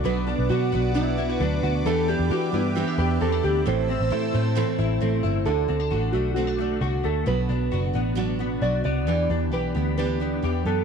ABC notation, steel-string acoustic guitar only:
X:1
M:4/4
L:1/8
Q:1/4=133
K:Dmix
V:1 name="Steel-string acoustic guitar"
[B,,F,B,DF] [B,DF] [F,B,DF] [B,DF] [B,,F,B,DF] [B,DF] [F,B,DF] [B,DF] | [E,B,DG] [B,DG] [E,B,DG] [B,DG] [E,B,DG] [B,DG] [E,B,DG] [B,DG] | [A,,E,A,CE] [A,CE] [E,A,CE] [A,CE] [A,,E,A,CE] [A,CE] [E,A,CE] [A,CE] | [D,A,DF] [A,DF] [D,A,DF] [A,DF] [D,A,DF] [A,DF] [D,A,DF] [A,DF] |
[B,,F,B,DF] [B,DF] [F,B,DF] [B,DF] [B,,F,B,DF] [B,DF] [F,B,DF] [B,DF] | [E,B,DG] [B,DG] [E,B,DG] [B,DG] [E,B,DG] [B,DG] [E,B,DG] [B,DG] |]